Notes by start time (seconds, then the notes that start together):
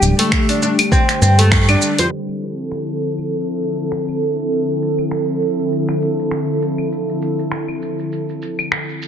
Already playing: D3 G3 G4
0.01 D1, shaker
0.19 A3, open hi-hat, shaker
0.32 finger snap, kick, shaker
0.49 D4, open hi-hat, shaker
0.62 D4, shaker
0.79 open hi-hat, claves, shaker
0.92 C4, kick, shaker
1.09 finger snap, open hi-hat, shaker
1.22 G2 C4, shaker
1.39 A3, open hi-hat, shaker
1.52 finger snap, kick, shaker
1.69 D4, open hi-hat, claves, shaker
1.82 shaker
1.99 F2 C5, open hi-hat, shaker
2.12 D3 F3 C4 E4 A4
2.29 claves, shaker
2.42 shaker
2.59 shaker
2.72 finger snap
2.89 shaker
3.02 shaker
3.19 claves, shaker
3.32 shaker
3.49 shaker
3.62 shaker
3.79 shaker
3.92 finger snap
4.09 claves, shaker
4.22 shaker
4.39 shaker
4.52 shaker
4.69 shaker
4.82 shaker
4.99 claves, shaker
5.11 finger snap, shaker
5.29 shaker
5.42 shaker
5.59 shaker
5.72 shaker
5.89 finger snap, claves, shaker
6.02 shaker
6.19 shaker
6.31 finger snap, shaker
6.49 shaker
6.62 shaker
6.78 claves, shaker
6.92 shaker
7.09 shaker
7.22 shaker
7.39 shaker
7.52 finger snap, shaker
7.68 claves, shaker
7.82 shaker
7.99 shaker
8.12 shaker
8.29 shaker
8.42 shaker
8.59 claves, shaker
8.72 finger snap, shaker
8.89 shaker
9.02 shaker